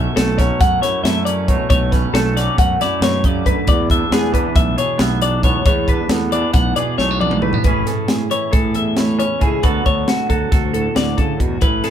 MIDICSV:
0, 0, Header, 1, 5, 480
1, 0, Start_track
1, 0, Key_signature, 3, "major"
1, 0, Tempo, 441176
1, 1840, Time_signature, 9, 3, 24, 8
1, 12948, End_track
2, 0, Start_track
2, 0, Title_t, "Clean electric guitar"
2, 0, Program_c, 0, 27
2, 0, Note_on_c, 0, 76, 74
2, 174, Note_off_c, 0, 76, 0
2, 176, Note_on_c, 0, 69, 73
2, 413, Note_off_c, 0, 69, 0
2, 413, Note_on_c, 0, 73, 68
2, 649, Note_off_c, 0, 73, 0
2, 662, Note_on_c, 0, 78, 79
2, 890, Note_off_c, 0, 78, 0
2, 894, Note_on_c, 0, 73, 71
2, 1123, Note_off_c, 0, 73, 0
2, 1128, Note_on_c, 0, 76, 75
2, 1359, Note_off_c, 0, 76, 0
2, 1363, Note_on_c, 0, 74, 70
2, 1613, Note_off_c, 0, 74, 0
2, 1613, Note_on_c, 0, 73, 67
2, 1835, Note_off_c, 0, 73, 0
2, 1848, Note_on_c, 0, 73, 81
2, 2087, Note_off_c, 0, 73, 0
2, 2087, Note_on_c, 0, 71, 71
2, 2322, Note_off_c, 0, 71, 0
2, 2326, Note_on_c, 0, 69, 80
2, 2562, Note_off_c, 0, 69, 0
2, 2575, Note_on_c, 0, 74, 70
2, 2806, Note_off_c, 0, 74, 0
2, 2816, Note_on_c, 0, 78, 78
2, 3046, Note_off_c, 0, 78, 0
2, 3063, Note_on_c, 0, 74, 68
2, 3289, Note_off_c, 0, 74, 0
2, 3302, Note_on_c, 0, 73, 74
2, 3536, Note_off_c, 0, 73, 0
2, 3536, Note_on_c, 0, 74, 71
2, 3765, Note_off_c, 0, 74, 0
2, 3768, Note_on_c, 0, 71, 71
2, 4001, Note_off_c, 0, 71, 0
2, 4009, Note_on_c, 0, 74, 82
2, 4241, Note_off_c, 0, 74, 0
2, 4255, Note_on_c, 0, 76, 77
2, 4484, Note_off_c, 0, 76, 0
2, 4495, Note_on_c, 0, 68, 77
2, 4719, Note_off_c, 0, 68, 0
2, 4723, Note_on_c, 0, 71, 71
2, 4958, Note_off_c, 0, 71, 0
2, 4962, Note_on_c, 0, 76, 79
2, 5197, Note_off_c, 0, 76, 0
2, 5204, Note_on_c, 0, 73, 67
2, 5444, Note_off_c, 0, 73, 0
2, 5444, Note_on_c, 0, 76, 78
2, 5677, Note_off_c, 0, 76, 0
2, 5681, Note_on_c, 0, 74, 68
2, 5915, Note_off_c, 0, 74, 0
2, 5919, Note_on_c, 0, 73, 69
2, 6149, Note_off_c, 0, 73, 0
2, 6162, Note_on_c, 0, 73, 83
2, 6397, Note_off_c, 0, 73, 0
2, 6402, Note_on_c, 0, 71, 73
2, 6638, Note_off_c, 0, 71, 0
2, 6638, Note_on_c, 0, 69, 76
2, 6876, Note_off_c, 0, 69, 0
2, 6880, Note_on_c, 0, 74, 70
2, 7105, Note_off_c, 0, 74, 0
2, 7109, Note_on_c, 0, 78, 77
2, 7351, Note_off_c, 0, 78, 0
2, 7356, Note_on_c, 0, 74, 66
2, 7593, Note_off_c, 0, 74, 0
2, 7597, Note_on_c, 0, 73, 77
2, 7835, Note_off_c, 0, 73, 0
2, 7840, Note_on_c, 0, 74, 64
2, 8077, Note_off_c, 0, 74, 0
2, 8078, Note_on_c, 0, 71, 72
2, 8303, Note_off_c, 0, 71, 0
2, 8316, Note_on_c, 0, 71, 76
2, 8558, Note_off_c, 0, 71, 0
2, 8558, Note_on_c, 0, 69, 70
2, 8798, Note_off_c, 0, 69, 0
2, 8798, Note_on_c, 0, 68, 72
2, 9038, Note_off_c, 0, 68, 0
2, 9044, Note_on_c, 0, 73, 63
2, 9277, Note_on_c, 0, 69, 73
2, 9281, Note_off_c, 0, 73, 0
2, 9518, Note_off_c, 0, 69, 0
2, 9525, Note_on_c, 0, 76, 63
2, 9763, Note_off_c, 0, 76, 0
2, 9763, Note_on_c, 0, 73, 71
2, 9990, Note_off_c, 0, 73, 0
2, 10003, Note_on_c, 0, 73, 62
2, 10242, Note_off_c, 0, 73, 0
2, 10246, Note_on_c, 0, 68, 67
2, 10483, Note_on_c, 0, 71, 79
2, 10485, Note_off_c, 0, 68, 0
2, 10723, Note_off_c, 0, 71, 0
2, 10728, Note_on_c, 0, 73, 70
2, 10966, Note_off_c, 0, 73, 0
2, 10973, Note_on_c, 0, 66, 70
2, 11199, Note_off_c, 0, 66, 0
2, 11203, Note_on_c, 0, 69, 63
2, 11445, Note_off_c, 0, 69, 0
2, 11445, Note_on_c, 0, 66, 72
2, 11680, Note_off_c, 0, 66, 0
2, 11684, Note_on_c, 0, 69, 65
2, 11927, Note_off_c, 0, 69, 0
2, 11929, Note_on_c, 0, 74, 74
2, 12160, Note_on_c, 0, 69, 64
2, 12170, Note_off_c, 0, 74, 0
2, 12405, Note_off_c, 0, 69, 0
2, 12405, Note_on_c, 0, 66, 72
2, 12642, Note_on_c, 0, 71, 75
2, 12648, Note_off_c, 0, 66, 0
2, 12882, Note_on_c, 0, 69, 69
2, 12888, Note_off_c, 0, 71, 0
2, 12948, Note_off_c, 0, 69, 0
2, 12948, End_track
3, 0, Start_track
3, 0, Title_t, "Clean electric guitar"
3, 0, Program_c, 1, 27
3, 0, Note_on_c, 1, 47, 67
3, 0, Note_on_c, 1, 52, 56
3, 0, Note_on_c, 1, 57, 57
3, 0, Note_on_c, 1, 61, 50
3, 191, Note_off_c, 1, 57, 0
3, 195, Note_on_c, 1, 57, 60
3, 416, Note_off_c, 1, 52, 0
3, 420, Note_on_c, 1, 54, 60
3, 421, Note_off_c, 1, 61, 0
3, 425, Note_on_c, 1, 61, 55
3, 883, Note_off_c, 1, 47, 0
3, 886, Note_on_c, 1, 42, 58
3, 891, Note_on_c, 1, 64, 52
3, 1127, Note_off_c, 1, 57, 0
3, 1140, Note_on_c, 1, 57, 60
3, 1371, Note_off_c, 1, 61, 0
3, 1394, Note_on_c, 1, 61, 53
3, 1602, Note_off_c, 1, 42, 0
3, 1610, Note_off_c, 1, 57, 0
3, 1616, Note_on_c, 1, 47, 68
3, 1629, Note_on_c, 1, 57, 58
3, 1819, Note_off_c, 1, 47, 0
3, 1854, Note_off_c, 1, 57, 0
3, 1860, Note_on_c, 1, 47, 67
3, 1870, Note_on_c, 1, 57, 58
3, 2095, Note_off_c, 1, 61, 0
3, 2109, Note_on_c, 1, 61, 54
3, 2309, Note_off_c, 1, 57, 0
3, 2322, Note_on_c, 1, 57, 59
3, 2564, Note_off_c, 1, 54, 0
3, 2569, Note_on_c, 1, 54, 58
3, 2573, Note_off_c, 1, 61, 0
3, 2588, Note_on_c, 1, 61, 57
3, 3047, Note_off_c, 1, 47, 0
3, 3049, Note_on_c, 1, 42, 60
3, 3052, Note_off_c, 1, 64, 0
3, 3056, Note_on_c, 1, 64, 53
3, 3289, Note_on_c, 1, 47, 63
3, 3522, Note_off_c, 1, 47, 0
3, 3542, Note_on_c, 1, 49, 64
3, 3768, Note_off_c, 1, 49, 0
3, 3782, Note_on_c, 1, 50, 62
3, 3972, Note_off_c, 1, 42, 0
3, 3996, Note_off_c, 1, 57, 0
3, 4008, Note_off_c, 1, 50, 0
3, 4010, Note_off_c, 1, 61, 0
3, 4020, Note_on_c, 1, 40, 68
3, 4034, Note_on_c, 1, 59, 56
3, 4052, Note_off_c, 1, 54, 0
3, 4253, Note_on_c, 1, 62, 60
3, 4480, Note_off_c, 1, 59, 0
3, 4485, Note_on_c, 1, 59, 60
3, 4700, Note_on_c, 1, 52, 63
3, 4705, Note_off_c, 1, 62, 0
3, 4709, Note_on_c, 1, 62, 56
3, 5187, Note_on_c, 1, 47, 60
3, 5192, Note_off_c, 1, 64, 0
3, 5196, Note_on_c, 1, 68, 56
3, 5404, Note_off_c, 1, 59, 0
3, 5417, Note_on_c, 1, 59, 61
3, 5670, Note_off_c, 1, 62, 0
3, 5682, Note_on_c, 1, 62, 56
3, 5895, Note_off_c, 1, 40, 0
3, 5905, Note_off_c, 1, 59, 0
3, 5908, Note_on_c, 1, 40, 73
3, 5919, Note_on_c, 1, 59, 59
3, 6121, Note_off_c, 1, 47, 0
3, 6127, Note_off_c, 1, 59, 0
3, 6128, Note_off_c, 1, 62, 0
3, 6150, Note_off_c, 1, 40, 0
3, 6161, Note_on_c, 1, 40, 66
3, 6173, Note_on_c, 1, 59, 57
3, 6414, Note_on_c, 1, 62, 55
3, 6446, Note_off_c, 1, 68, 0
3, 6643, Note_off_c, 1, 59, 0
3, 6661, Note_on_c, 1, 59, 61
3, 6866, Note_off_c, 1, 52, 0
3, 6883, Note_off_c, 1, 62, 0
3, 6891, Note_on_c, 1, 52, 58
3, 6897, Note_on_c, 1, 62, 53
3, 7361, Note_on_c, 1, 47, 59
3, 7370, Note_on_c, 1, 68, 55
3, 7608, Note_off_c, 1, 59, 0
3, 7612, Note_on_c, 1, 57, 56
3, 7732, Note_off_c, 1, 57, 0
3, 7732, Note_on_c, 1, 59, 45
3, 7842, Note_off_c, 1, 62, 0
3, 7855, Note_on_c, 1, 62, 53
3, 8052, Note_off_c, 1, 40, 0
3, 8059, Note_off_c, 1, 59, 0
3, 8063, Note_on_c, 1, 57, 57
3, 8064, Note_on_c, 1, 40, 67
3, 8201, Note_off_c, 1, 57, 0
3, 8201, Note_on_c, 1, 59, 43
3, 8290, Note_off_c, 1, 47, 0
3, 8294, Note_off_c, 1, 68, 0
3, 8296, Note_off_c, 1, 62, 0
3, 8310, Note_off_c, 1, 40, 0
3, 8318, Note_off_c, 1, 59, 0
3, 8321, Note_off_c, 1, 52, 0
3, 8326, Note_on_c, 1, 45, 62
3, 8335, Note_on_c, 1, 52, 51
3, 8344, Note_on_c, 1, 61, 56
3, 8350, Note_on_c, 1, 64, 52
3, 8357, Note_on_c, 1, 68, 63
3, 8548, Note_off_c, 1, 68, 0
3, 8561, Note_on_c, 1, 68, 50
3, 9022, Note_off_c, 1, 52, 0
3, 9026, Note_off_c, 1, 64, 0
3, 9034, Note_on_c, 1, 52, 54
3, 9042, Note_on_c, 1, 64, 52
3, 9251, Note_off_c, 1, 68, 0
3, 9264, Note_on_c, 1, 68, 58
3, 9505, Note_on_c, 1, 40, 58
3, 9744, Note_off_c, 1, 64, 0
3, 9757, Note_on_c, 1, 64, 57
3, 9982, Note_off_c, 1, 61, 0
3, 9995, Note_on_c, 1, 61, 54
3, 10209, Note_off_c, 1, 45, 0
3, 10222, Note_on_c, 1, 45, 67
3, 10226, Note_off_c, 1, 64, 0
3, 10234, Note_off_c, 1, 40, 0
3, 10239, Note_on_c, 1, 64, 58
3, 10446, Note_off_c, 1, 68, 0
3, 10450, Note_off_c, 1, 61, 0
3, 10452, Note_off_c, 1, 64, 0
3, 10459, Note_off_c, 1, 45, 0
3, 10464, Note_on_c, 1, 50, 64
3, 10470, Note_off_c, 1, 52, 0
3, 10474, Note_on_c, 1, 54, 50
3, 10479, Note_on_c, 1, 59, 53
3, 10486, Note_on_c, 1, 66, 55
3, 10498, Note_on_c, 1, 69, 63
3, 10714, Note_off_c, 1, 69, 0
3, 10718, Note_on_c, 1, 69, 52
3, 11183, Note_off_c, 1, 54, 0
3, 11192, Note_off_c, 1, 66, 0
3, 11196, Note_on_c, 1, 54, 55
3, 11205, Note_on_c, 1, 66, 55
3, 11435, Note_off_c, 1, 69, 0
3, 11439, Note_on_c, 1, 69, 59
3, 11673, Note_on_c, 1, 45, 54
3, 11896, Note_off_c, 1, 50, 0
3, 11909, Note_on_c, 1, 50, 58
3, 12158, Note_off_c, 1, 50, 0
3, 12162, Note_on_c, 1, 49, 55
3, 12395, Note_off_c, 1, 49, 0
3, 12399, Note_on_c, 1, 47, 60
3, 12615, Note_off_c, 1, 45, 0
3, 12618, Note_off_c, 1, 54, 0
3, 12619, Note_off_c, 1, 69, 0
3, 12621, Note_off_c, 1, 59, 0
3, 12622, Note_off_c, 1, 66, 0
3, 12628, Note_off_c, 1, 47, 0
3, 12633, Note_on_c, 1, 45, 64
3, 12639, Note_on_c, 1, 64, 55
3, 12880, Note_on_c, 1, 68, 55
3, 12948, Note_off_c, 1, 45, 0
3, 12948, Note_off_c, 1, 64, 0
3, 12948, Note_off_c, 1, 68, 0
3, 12948, End_track
4, 0, Start_track
4, 0, Title_t, "Fingered electric bass"
4, 0, Program_c, 2, 33
4, 180, Note_on_c, 2, 35, 95
4, 546, Note_off_c, 2, 35, 0
4, 660, Note_on_c, 2, 42, 92
4, 840, Note_off_c, 2, 42, 0
4, 1128, Note_on_c, 2, 42, 86
4, 1684, Note_off_c, 2, 42, 0
4, 1852, Note_on_c, 2, 35, 94
4, 2219, Note_off_c, 2, 35, 0
4, 2322, Note_on_c, 2, 35, 101
4, 2692, Note_off_c, 2, 35, 0
4, 2808, Note_on_c, 2, 42, 97
4, 2990, Note_off_c, 2, 42, 0
4, 3277, Note_on_c, 2, 42, 84
4, 3835, Note_off_c, 2, 42, 0
4, 3993, Note_on_c, 2, 40, 98
4, 4366, Note_off_c, 2, 40, 0
4, 4475, Note_on_c, 2, 40, 93
4, 4847, Note_off_c, 2, 40, 0
4, 4953, Note_on_c, 2, 35, 99
4, 5139, Note_off_c, 2, 35, 0
4, 5427, Note_on_c, 2, 35, 75
4, 5989, Note_off_c, 2, 35, 0
4, 6151, Note_on_c, 2, 40, 88
4, 6525, Note_off_c, 2, 40, 0
4, 6627, Note_on_c, 2, 40, 95
4, 7002, Note_off_c, 2, 40, 0
4, 7116, Note_on_c, 2, 35, 92
4, 7302, Note_off_c, 2, 35, 0
4, 7598, Note_on_c, 2, 35, 84
4, 8157, Note_off_c, 2, 35, 0
4, 8314, Note_on_c, 2, 33, 87
4, 8501, Note_off_c, 2, 33, 0
4, 9282, Note_on_c, 2, 45, 78
4, 10029, Note_off_c, 2, 45, 0
4, 10243, Note_on_c, 2, 37, 78
4, 10429, Note_off_c, 2, 37, 0
4, 10481, Note_on_c, 2, 38, 84
4, 10669, Note_off_c, 2, 38, 0
4, 10727, Note_on_c, 2, 38, 76
4, 10913, Note_off_c, 2, 38, 0
4, 11199, Note_on_c, 2, 38, 81
4, 11389, Note_off_c, 2, 38, 0
4, 11443, Note_on_c, 2, 38, 96
4, 11819, Note_off_c, 2, 38, 0
4, 11923, Note_on_c, 2, 38, 86
4, 12112, Note_off_c, 2, 38, 0
4, 12157, Note_on_c, 2, 50, 73
4, 12349, Note_off_c, 2, 50, 0
4, 12400, Note_on_c, 2, 40, 87
4, 12591, Note_off_c, 2, 40, 0
4, 12640, Note_on_c, 2, 33, 92
4, 12832, Note_off_c, 2, 33, 0
4, 12948, End_track
5, 0, Start_track
5, 0, Title_t, "Drums"
5, 184, Note_on_c, 9, 42, 94
5, 185, Note_on_c, 9, 38, 101
5, 293, Note_off_c, 9, 42, 0
5, 294, Note_off_c, 9, 38, 0
5, 420, Note_on_c, 9, 36, 69
5, 427, Note_on_c, 9, 42, 65
5, 428, Note_on_c, 9, 38, 31
5, 529, Note_off_c, 9, 36, 0
5, 536, Note_off_c, 9, 42, 0
5, 537, Note_off_c, 9, 38, 0
5, 659, Note_on_c, 9, 36, 106
5, 660, Note_on_c, 9, 42, 88
5, 661, Note_on_c, 9, 38, 34
5, 768, Note_off_c, 9, 36, 0
5, 769, Note_off_c, 9, 42, 0
5, 770, Note_off_c, 9, 38, 0
5, 903, Note_on_c, 9, 42, 66
5, 904, Note_on_c, 9, 38, 32
5, 1012, Note_off_c, 9, 42, 0
5, 1013, Note_off_c, 9, 38, 0
5, 1144, Note_on_c, 9, 42, 90
5, 1145, Note_on_c, 9, 38, 96
5, 1253, Note_off_c, 9, 42, 0
5, 1254, Note_off_c, 9, 38, 0
5, 1376, Note_on_c, 9, 42, 68
5, 1485, Note_off_c, 9, 42, 0
5, 1614, Note_on_c, 9, 36, 70
5, 1615, Note_on_c, 9, 42, 65
5, 1723, Note_off_c, 9, 36, 0
5, 1724, Note_off_c, 9, 42, 0
5, 1850, Note_on_c, 9, 42, 83
5, 1852, Note_on_c, 9, 36, 108
5, 1959, Note_off_c, 9, 42, 0
5, 1961, Note_off_c, 9, 36, 0
5, 2092, Note_on_c, 9, 36, 74
5, 2096, Note_on_c, 9, 42, 58
5, 2097, Note_on_c, 9, 38, 32
5, 2201, Note_off_c, 9, 36, 0
5, 2204, Note_off_c, 9, 42, 0
5, 2205, Note_off_c, 9, 38, 0
5, 2337, Note_on_c, 9, 42, 86
5, 2338, Note_on_c, 9, 38, 106
5, 2446, Note_off_c, 9, 42, 0
5, 2447, Note_off_c, 9, 38, 0
5, 2579, Note_on_c, 9, 42, 61
5, 2580, Note_on_c, 9, 38, 31
5, 2688, Note_off_c, 9, 42, 0
5, 2689, Note_off_c, 9, 38, 0
5, 2811, Note_on_c, 9, 36, 104
5, 2817, Note_on_c, 9, 42, 81
5, 2920, Note_off_c, 9, 36, 0
5, 2925, Note_off_c, 9, 42, 0
5, 3056, Note_on_c, 9, 42, 63
5, 3058, Note_on_c, 9, 38, 34
5, 3165, Note_off_c, 9, 42, 0
5, 3166, Note_off_c, 9, 38, 0
5, 3287, Note_on_c, 9, 42, 90
5, 3288, Note_on_c, 9, 38, 108
5, 3396, Note_off_c, 9, 42, 0
5, 3397, Note_off_c, 9, 38, 0
5, 3525, Note_on_c, 9, 36, 72
5, 3526, Note_on_c, 9, 42, 67
5, 3634, Note_off_c, 9, 36, 0
5, 3635, Note_off_c, 9, 42, 0
5, 3764, Note_on_c, 9, 36, 69
5, 3769, Note_on_c, 9, 42, 66
5, 3873, Note_off_c, 9, 36, 0
5, 3878, Note_off_c, 9, 42, 0
5, 3997, Note_on_c, 9, 42, 91
5, 4001, Note_on_c, 9, 36, 99
5, 4106, Note_off_c, 9, 42, 0
5, 4110, Note_off_c, 9, 36, 0
5, 4242, Note_on_c, 9, 36, 71
5, 4251, Note_on_c, 9, 42, 69
5, 4351, Note_off_c, 9, 36, 0
5, 4360, Note_off_c, 9, 42, 0
5, 4486, Note_on_c, 9, 42, 91
5, 4487, Note_on_c, 9, 38, 105
5, 4595, Note_off_c, 9, 42, 0
5, 4596, Note_off_c, 9, 38, 0
5, 4719, Note_on_c, 9, 36, 60
5, 4728, Note_on_c, 9, 42, 69
5, 4828, Note_off_c, 9, 36, 0
5, 4836, Note_off_c, 9, 42, 0
5, 4957, Note_on_c, 9, 36, 104
5, 4959, Note_on_c, 9, 42, 97
5, 5066, Note_off_c, 9, 36, 0
5, 5068, Note_off_c, 9, 42, 0
5, 5201, Note_on_c, 9, 42, 68
5, 5310, Note_off_c, 9, 42, 0
5, 5430, Note_on_c, 9, 42, 85
5, 5431, Note_on_c, 9, 38, 105
5, 5539, Note_off_c, 9, 42, 0
5, 5540, Note_off_c, 9, 38, 0
5, 5674, Note_on_c, 9, 42, 65
5, 5783, Note_off_c, 9, 42, 0
5, 5912, Note_on_c, 9, 36, 74
5, 5914, Note_on_c, 9, 42, 58
5, 6020, Note_off_c, 9, 36, 0
5, 6023, Note_off_c, 9, 42, 0
5, 6153, Note_on_c, 9, 42, 85
5, 6154, Note_on_c, 9, 36, 100
5, 6262, Note_off_c, 9, 42, 0
5, 6263, Note_off_c, 9, 36, 0
5, 6395, Note_on_c, 9, 36, 69
5, 6401, Note_on_c, 9, 42, 55
5, 6504, Note_off_c, 9, 36, 0
5, 6510, Note_off_c, 9, 42, 0
5, 6630, Note_on_c, 9, 42, 84
5, 6631, Note_on_c, 9, 38, 104
5, 6739, Note_off_c, 9, 42, 0
5, 6740, Note_off_c, 9, 38, 0
5, 6876, Note_on_c, 9, 42, 61
5, 6985, Note_off_c, 9, 42, 0
5, 7111, Note_on_c, 9, 42, 87
5, 7112, Note_on_c, 9, 38, 35
5, 7116, Note_on_c, 9, 36, 105
5, 7220, Note_off_c, 9, 42, 0
5, 7221, Note_off_c, 9, 38, 0
5, 7225, Note_off_c, 9, 36, 0
5, 7357, Note_on_c, 9, 42, 67
5, 7466, Note_off_c, 9, 42, 0
5, 7599, Note_on_c, 9, 38, 57
5, 7708, Note_off_c, 9, 38, 0
5, 7848, Note_on_c, 9, 48, 77
5, 7955, Note_on_c, 9, 47, 72
5, 7956, Note_off_c, 9, 48, 0
5, 8064, Note_off_c, 9, 47, 0
5, 8073, Note_on_c, 9, 45, 85
5, 8182, Note_off_c, 9, 45, 0
5, 8191, Note_on_c, 9, 43, 82
5, 8300, Note_off_c, 9, 43, 0
5, 8313, Note_on_c, 9, 42, 76
5, 8318, Note_on_c, 9, 36, 95
5, 8421, Note_off_c, 9, 42, 0
5, 8427, Note_off_c, 9, 36, 0
5, 8559, Note_on_c, 9, 42, 56
5, 8560, Note_on_c, 9, 38, 29
5, 8667, Note_off_c, 9, 42, 0
5, 8669, Note_off_c, 9, 38, 0
5, 8795, Note_on_c, 9, 42, 76
5, 8796, Note_on_c, 9, 38, 100
5, 8903, Note_off_c, 9, 42, 0
5, 8904, Note_off_c, 9, 38, 0
5, 9040, Note_on_c, 9, 42, 54
5, 9148, Note_off_c, 9, 42, 0
5, 9279, Note_on_c, 9, 42, 77
5, 9283, Note_on_c, 9, 36, 95
5, 9388, Note_off_c, 9, 42, 0
5, 9392, Note_off_c, 9, 36, 0
5, 9514, Note_on_c, 9, 42, 54
5, 9623, Note_off_c, 9, 42, 0
5, 9754, Note_on_c, 9, 42, 72
5, 9755, Note_on_c, 9, 38, 94
5, 9863, Note_off_c, 9, 42, 0
5, 9864, Note_off_c, 9, 38, 0
5, 10006, Note_on_c, 9, 42, 54
5, 10115, Note_off_c, 9, 42, 0
5, 10240, Note_on_c, 9, 42, 53
5, 10244, Note_on_c, 9, 36, 67
5, 10349, Note_off_c, 9, 42, 0
5, 10353, Note_off_c, 9, 36, 0
5, 10480, Note_on_c, 9, 42, 74
5, 10486, Note_on_c, 9, 36, 98
5, 10589, Note_off_c, 9, 42, 0
5, 10594, Note_off_c, 9, 36, 0
5, 10725, Note_on_c, 9, 42, 51
5, 10727, Note_on_c, 9, 36, 69
5, 10833, Note_off_c, 9, 42, 0
5, 10836, Note_off_c, 9, 36, 0
5, 10964, Note_on_c, 9, 42, 75
5, 10965, Note_on_c, 9, 38, 104
5, 11073, Note_off_c, 9, 42, 0
5, 11074, Note_off_c, 9, 38, 0
5, 11204, Note_on_c, 9, 36, 63
5, 11205, Note_on_c, 9, 42, 55
5, 11313, Note_off_c, 9, 36, 0
5, 11313, Note_off_c, 9, 42, 0
5, 11446, Note_on_c, 9, 42, 81
5, 11447, Note_on_c, 9, 36, 102
5, 11447, Note_on_c, 9, 38, 31
5, 11555, Note_off_c, 9, 42, 0
5, 11556, Note_off_c, 9, 36, 0
5, 11556, Note_off_c, 9, 38, 0
5, 11688, Note_on_c, 9, 42, 59
5, 11797, Note_off_c, 9, 42, 0
5, 11924, Note_on_c, 9, 42, 78
5, 11925, Note_on_c, 9, 38, 100
5, 12033, Note_off_c, 9, 42, 0
5, 12034, Note_off_c, 9, 38, 0
5, 12163, Note_on_c, 9, 42, 57
5, 12164, Note_on_c, 9, 36, 67
5, 12272, Note_off_c, 9, 36, 0
5, 12272, Note_off_c, 9, 42, 0
5, 12404, Note_on_c, 9, 36, 65
5, 12405, Note_on_c, 9, 42, 55
5, 12513, Note_off_c, 9, 36, 0
5, 12514, Note_off_c, 9, 42, 0
5, 12636, Note_on_c, 9, 42, 83
5, 12643, Note_on_c, 9, 36, 99
5, 12744, Note_off_c, 9, 42, 0
5, 12752, Note_off_c, 9, 36, 0
5, 12878, Note_on_c, 9, 42, 53
5, 12880, Note_on_c, 9, 38, 30
5, 12948, Note_off_c, 9, 38, 0
5, 12948, Note_off_c, 9, 42, 0
5, 12948, End_track
0, 0, End_of_file